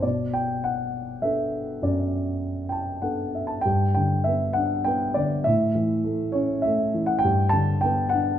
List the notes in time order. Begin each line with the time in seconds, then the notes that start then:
0.02 B2 D5
0.34 G5
0.64 F#5
1.22 B3 D4 A4 E5
1.82 F#2 D5
2.69 G5 A5
3.02 B3 D4 A4 F#5
3.35 E5
3.47 A5
3.61 G2 G5
3.95 D3 G5
4.24 B3 E5
4.53 D4 F#5
4.85 B3 G5
5.14 D3 D5
5.44 A2 E5
5.75 E3
6.04 A3
6.32 C#4 C#5
6.62 A3 E5
6.94 E3
7.06 F#5
7.19 G5
7.24 G2
7.49 D3 A5
7.81 B3 G5
8.09 F#5
8.14 D4